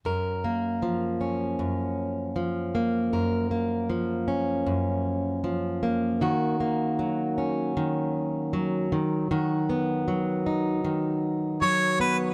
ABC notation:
X:1
M:4/4
L:1/8
Q:"Swing 16ths" 1/4=78
K:F#
V:1 name="Harmonica"
z8 | z8 | z8 | z6 c B |]
V:2 name="Steel-string acoustic guitar" clef=bass
[F,,A] A, E, C F,,2 E, A, | [F,,A] A, E, C F,,2 E, A, | [D,F] A, F, C D,2 F, D, | [D,F] B, F, D D,2 F, B, |]